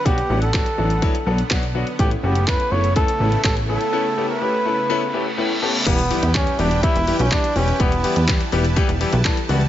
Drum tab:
CC |----------------|----------------|----------------|x---------------|
HH |xx-xxx-xxx-xxx-x|xx-xxx-xxx-xxx-x|----------------|xxoxxxoxxxoxxxox|
SH |----------------|----------------|----------------|xxxxxxxxxxxxxxxx|
CP |----x-------x---|----x-------x---|----------------|----x-------x---|
BD |o---o---o---o---|o---o---o---o---|----------------|o---o---o---o---|

CC |----------------|
HH |xxoxxxoxxxoxxxox|
SH |xxxxxxxxxxxxxxxx|
CP |----x-------x---|
BD |o---o---o---o---|